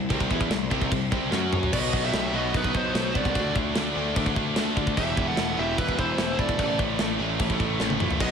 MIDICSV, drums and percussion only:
0, 0, Header, 1, 2, 480
1, 0, Start_track
1, 0, Tempo, 404858
1, 123, Time_signature, 4, 2, 24, 8
1, 9854, End_track
2, 0, Start_track
2, 0, Title_t, "Drums"
2, 122, Note_on_c, 9, 36, 102
2, 122, Note_on_c, 9, 49, 60
2, 240, Note_off_c, 9, 36, 0
2, 240, Note_off_c, 9, 49, 0
2, 243, Note_on_c, 9, 36, 87
2, 361, Note_off_c, 9, 36, 0
2, 363, Note_on_c, 9, 36, 89
2, 482, Note_off_c, 9, 36, 0
2, 482, Note_on_c, 9, 36, 97
2, 600, Note_off_c, 9, 36, 0
2, 602, Note_on_c, 9, 49, 63
2, 603, Note_on_c, 9, 38, 116
2, 720, Note_off_c, 9, 49, 0
2, 721, Note_off_c, 9, 38, 0
2, 846, Note_on_c, 9, 36, 79
2, 964, Note_off_c, 9, 36, 0
2, 966, Note_on_c, 9, 36, 80
2, 1085, Note_off_c, 9, 36, 0
2, 1087, Note_on_c, 9, 36, 100
2, 1090, Note_on_c, 9, 49, 58
2, 1205, Note_off_c, 9, 36, 0
2, 1209, Note_off_c, 9, 49, 0
2, 1328, Note_on_c, 9, 36, 88
2, 1446, Note_off_c, 9, 36, 0
2, 1567, Note_on_c, 9, 38, 72
2, 1686, Note_off_c, 9, 38, 0
2, 1809, Note_on_c, 9, 45, 99
2, 1927, Note_off_c, 9, 45, 0
2, 1933, Note_on_c, 9, 43, 96
2, 2049, Note_on_c, 9, 52, 61
2, 2049, Note_on_c, 9, 57, 126
2, 2052, Note_off_c, 9, 43, 0
2, 2052, Note_on_c, 9, 36, 108
2, 2168, Note_off_c, 9, 52, 0
2, 2168, Note_off_c, 9, 57, 0
2, 2171, Note_off_c, 9, 36, 0
2, 2292, Note_on_c, 9, 36, 88
2, 2411, Note_off_c, 9, 36, 0
2, 2531, Note_on_c, 9, 52, 62
2, 2532, Note_on_c, 9, 38, 110
2, 2650, Note_off_c, 9, 52, 0
2, 2651, Note_off_c, 9, 38, 0
2, 3015, Note_on_c, 9, 52, 69
2, 3017, Note_on_c, 9, 36, 112
2, 3133, Note_off_c, 9, 52, 0
2, 3135, Note_off_c, 9, 36, 0
2, 3135, Note_on_c, 9, 36, 87
2, 3254, Note_off_c, 9, 36, 0
2, 3256, Note_on_c, 9, 36, 91
2, 3374, Note_off_c, 9, 36, 0
2, 3499, Note_on_c, 9, 52, 65
2, 3500, Note_on_c, 9, 38, 127
2, 3618, Note_off_c, 9, 52, 0
2, 3619, Note_off_c, 9, 38, 0
2, 3737, Note_on_c, 9, 36, 89
2, 3856, Note_off_c, 9, 36, 0
2, 3856, Note_on_c, 9, 36, 94
2, 3975, Note_off_c, 9, 36, 0
2, 3976, Note_on_c, 9, 36, 98
2, 3976, Note_on_c, 9, 52, 58
2, 4094, Note_off_c, 9, 36, 0
2, 4095, Note_off_c, 9, 52, 0
2, 4216, Note_on_c, 9, 36, 94
2, 4334, Note_off_c, 9, 36, 0
2, 4451, Note_on_c, 9, 52, 61
2, 4452, Note_on_c, 9, 38, 113
2, 4570, Note_off_c, 9, 52, 0
2, 4571, Note_off_c, 9, 38, 0
2, 4932, Note_on_c, 9, 52, 68
2, 4935, Note_on_c, 9, 36, 117
2, 5051, Note_off_c, 9, 52, 0
2, 5054, Note_off_c, 9, 36, 0
2, 5054, Note_on_c, 9, 36, 94
2, 5172, Note_off_c, 9, 36, 0
2, 5174, Note_on_c, 9, 36, 84
2, 5292, Note_off_c, 9, 36, 0
2, 5407, Note_on_c, 9, 52, 72
2, 5408, Note_on_c, 9, 38, 113
2, 5525, Note_off_c, 9, 52, 0
2, 5527, Note_off_c, 9, 38, 0
2, 5653, Note_on_c, 9, 36, 86
2, 5771, Note_off_c, 9, 36, 0
2, 5774, Note_on_c, 9, 36, 97
2, 5893, Note_off_c, 9, 36, 0
2, 5893, Note_on_c, 9, 52, 67
2, 5895, Note_on_c, 9, 36, 95
2, 6011, Note_off_c, 9, 52, 0
2, 6013, Note_off_c, 9, 36, 0
2, 6134, Note_on_c, 9, 36, 95
2, 6253, Note_off_c, 9, 36, 0
2, 6369, Note_on_c, 9, 52, 60
2, 6371, Note_on_c, 9, 38, 105
2, 6488, Note_off_c, 9, 52, 0
2, 6489, Note_off_c, 9, 38, 0
2, 6857, Note_on_c, 9, 36, 122
2, 6858, Note_on_c, 9, 52, 72
2, 6975, Note_off_c, 9, 36, 0
2, 6977, Note_off_c, 9, 52, 0
2, 6977, Note_on_c, 9, 36, 85
2, 7096, Note_off_c, 9, 36, 0
2, 7098, Note_on_c, 9, 36, 86
2, 7216, Note_off_c, 9, 36, 0
2, 7331, Note_on_c, 9, 52, 67
2, 7332, Note_on_c, 9, 38, 127
2, 7449, Note_off_c, 9, 52, 0
2, 7450, Note_off_c, 9, 38, 0
2, 7574, Note_on_c, 9, 36, 92
2, 7692, Note_off_c, 9, 36, 0
2, 7692, Note_on_c, 9, 36, 90
2, 7811, Note_off_c, 9, 36, 0
2, 7811, Note_on_c, 9, 52, 62
2, 7813, Note_on_c, 9, 36, 100
2, 7930, Note_off_c, 9, 52, 0
2, 7932, Note_off_c, 9, 36, 0
2, 8052, Note_on_c, 9, 36, 86
2, 8171, Note_off_c, 9, 36, 0
2, 8286, Note_on_c, 9, 52, 57
2, 8287, Note_on_c, 9, 38, 106
2, 8405, Note_off_c, 9, 52, 0
2, 8406, Note_off_c, 9, 38, 0
2, 8767, Note_on_c, 9, 52, 65
2, 8771, Note_on_c, 9, 36, 116
2, 8885, Note_off_c, 9, 52, 0
2, 8889, Note_off_c, 9, 36, 0
2, 8890, Note_on_c, 9, 36, 87
2, 9009, Note_off_c, 9, 36, 0
2, 9010, Note_on_c, 9, 36, 88
2, 9128, Note_off_c, 9, 36, 0
2, 9247, Note_on_c, 9, 38, 77
2, 9366, Note_off_c, 9, 38, 0
2, 9367, Note_on_c, 9, 48, 73
2, 9486, Note_off_c, 9, 48, 0
2, 9488, Note_on_c, 9, 45, 96
2, 9606, Note_off_c, 9, 45, 0
2, 9610, Note_on_c, 9, 43, 102
2, 9726, Note_on_c, 9, 49, 95
2, 9726, Note_on_c, 9, 52, 63
2, 9727, Note_on_c, 9, 36, 102
2, 9728, Note_off_c, 9, 43, 0
2, 9844, Note_off_c, 9, 49, 0
2, 9844, Note_off_c, 9, 52, 0
2, 9845, Note_off_c, 9, 36, 0
2, 9854, End_track
0, 0, End_of_file